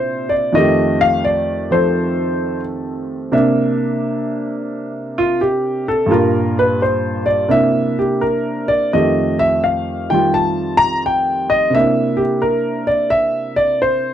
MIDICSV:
0, 0, Header, 1, 2, 480
1, 0, Start_track
1, 0, Tempo, 693642
1, 380, Time_signature, 4, 2, 24, 8
1, 4214, Tempo, 706714
1, 7094, Tempo, 692042
1, 9734, End_track
2, 0, Start_track
2, 0, Title_t, "Grand piano"
2, 0, Program_c, 0, 0
2, 0, Note_on_c, 0, 46, 52
2, 0, Note_on_c, 0, 48, 59
2, 0, Note_on_c, 0, 60, 43
2, 0, Note_on_c, 0, 62, 54
2, 0, Note_on_c, 0, 64, 50
2, 0, Note_on_c, 0, 72, 70
2, 203, Note_on_c, 0, 74, 74
2, 218, Note_off_c, 0, 72, 0
2, 364, Note_on_c, 0, 41, 59
2, 366, Note_off_c, 0, 74, 0
2, 373, Note_on_c, 0, 51, 58
2, 376, Note_off_c, 0, 48, 0
2, 378, Note_off_c, 0, 46, 0
2, 378, Note_off_c, 0, 60, 0
2, 378, Note_off_c, 0, 62, 0
2, 381, Note_on_c, 0, 75, 78
2, 385, Note_on_c, 0, 57, 54
2, 389, Note_off_c, 0, 64, 0
2, 396, Note_on_c, 0, 67, 64
2, 697, Note_off_c, 0, 75, 0
2, 699, Note_on_c, 0, 77, 95
2, 855, Note_off_c, 0, 77, 0
2, 862, Note_on_c, 0, 74, 76
2, 1177, Note_off_c, 0, 74, 0
2, 1182, Note_on_c, 0, 53, 46
2, 1190, Note_on_c, 0, 60, 41
2, 1191, Note_on_c, 0, 72, 73
2, 1198, Note_on_c, 0, 69, 50
2, 1796, Note_off_c, 0, 72, 0
2, 2293, Note_off_c, 0, 41, 0
2, 2296, Note_on_c, 0, 48, 62
2, 2298, Note_off_c, 0, 51, 0
2, 2298, Note_off_c, 0, 53, 0
2, 2299, Note_on_c, 0, 58, 60
2, 2301, Note_on_c, 0, 62, 58
2, 2302, Note_off_c, 0, 60, 0
2, 2304, Note_off_c, 0, 57, 0
2, 2306, Note_off_c, 0, 69, 0
2, 2306, Note_on_c, 0, 76, 73
2, 2309, Note_off_c, 0, 67, 0
2, 3585, Note_on_c, 0, 65, 81
2, 3733, Note_off_c, 0, 65, 0
2, 3745, Note_on_c, 0, 67, 72
2, 4053, Note_off_c, 0, 67, 0
2, 4071, Note_on_c, 0, 69, 75
2, 4195, Note_on_c, 0, 43, 56
2, 4211, Note_on_c, 0, 55, 52
2, 4212, Note_off_c, 0, 48, 0
2, 4214, Note_off_c, 0, 58, 0
2, 4215, Note_off_c, 0, 62, 0
2, 4217, Note_off_c, 0, 76, 0
2, 4218, Note_off_c, 0, 69, 0
2, 4223, Note_on_c, 0, 46, 53
2, 4227, Note_on_c, 0, 65, 62
2, 4232, Note_on_c, 0, 70, 66
2, 4536, Note_off_c, 0, 70, 0
2, 4553, Note_on_c, 0, 71, 79
2, 4697, Note_off_c, 0, 71, 0
2, 4712, Note_on_c, 0, 72, 69
2, 5008, Note_on_c, 0, 74, 76
2, 5015, Note_off_c, 0, 72, 0
2, 5161, Note_off_c, 0, 43, 0
2, 5162, Note_off_c, 0, 74, 0
2, 5162, Note_on_c, 0, 48, 51
2, 5163, Note_on_c, 0, 58, 49
2, 5169, Note_off_c, 0, 55, 0
2, 5170, Note_on_c, 0, 62, 45
2, 5172, Note_on_c, 0, 64, 53
2, 5175, Note_off_c, 0, 46, 0
2, 5177, Note_off_c, 0, 65, 0
2, 5180, Note_on_c, 0, 76, 90
2, 5489, Note_off_c, 0, 76, 0
2, 5504, Note_on_c, 0, 67, 61
2, 5653, Note_off_c, 0, 67, 0
2, 5656, Note_on_c, 0, 70, 74
2, 5972, Note_off_c, 0, 70, 0
2, 5974, Note_on_c, 0, 74, 84
2, 6130, Note_off_c, 0, 74, 0
2, 6133, Note_off_c, 0, 48, 0
2, 6133, Note_off_c, 0, 58, 0
2, 6137, Note_off_c, 0, 62, 0
2, 6138, Note_off_c, 0, 64, 0
2, 6145, Note_on_c, 0, 75, 71
2, 6147, Note_on_c, 0, 41, 52
2, 6151, Note_on_c, 0, 51, 44
2, 6153, Note_on_c, 0, 57, 47
2, 6158, Note_on_c, 0, 67, 53
2, 6456, Note_off_c, 0, 75, 0
2, 6458, Note_on_c, 0, 76, 93
2, 6612, Note_off_c, 0, 76, 0
2, 6623, Note_on_c, 0, 77, 72
2, 6929, Note_off_c, 0, 51, 0
2, 6933, Note_off_c, 0, 77, 0
2, 6938, Note_on_c, 0, 79, 84
2, 6940, Note_on_c, 0, 51, 40
2, 6954, Note_on_c, 0, 55, 40
2, 6962, Note_on_c, 0, 65, 49
2, 7090, Note_off_c, 0, 79, 0
2, 7101, Note_on_c, 0, 81, 78
2, 7402, Note_on_c, 0, 82, 106
2, 7415, Note_off_c, 0, 81, 0
2, 7565, Note_off_c, 0, 82, 0
2, 7600, Note_on_c, 0, 79, 81
2, 7903, Note_on_c, 0, 75, 90
2, 7906, Note_off_c, 0, 79, 0
2, 8046, Note_on_c, 0, 48, 48
2, 8056, Note_off_c, 0, 75, 0
2, 8061, Note_off_c, 0, 51, 0
2, 8066, Note_off_c, 0, 41, 0
2, 8068, Note_off_c, 0, 55, 0
2, 8069, Note_off_c, 0, 57, 0
2, 8069, Note_on_c, 0, 58, 45
2, 8072, Note_off_c, 0, 67, 0
2, 8073, Note_off_c, 0, 65, 0
2, 8076, Note_on_c, 0, 76, 91
2, 8089, Note_on_c, 0, 62, 44
2, 8118, Note_on_c, 0, 64, 53
2, 8369, Note_on_c, 0, 67, 67
2, 8382, Note_off_c, 0, 76, 0
2, 8528, Note_off_c, 0, 67, 0
2, 8541, Note_on_c, 0, 70, 71
2, 8855, Note_off_c, 0, 70, 0
2, 8856, Note_on_c, 0, 74, 84
2, 9012, Note_off_c, 0, 74, 0
2, 9018, Note_on_c, 0, 76, 97
2, 9331, Note_off_c, 0, 76, 0
2, 9337, Note_on_c, 0, 74, 90
2, 9491, Note_off_c, 0, 74, 0
2, 9513, Note_on_c, 0, 72, 79
2, 9734, Note_off_c, 0, 48, 0
2, 9734, Note_off_c, 0, 58, 0
2, 9734, Note_off_c, 0, 62, 0
2, 9734, Note_off_c, 0, 64, 0
2, 9734, Note_off_c, 0, 72, 0
2, 9734, End_track
0, 0, End_of_file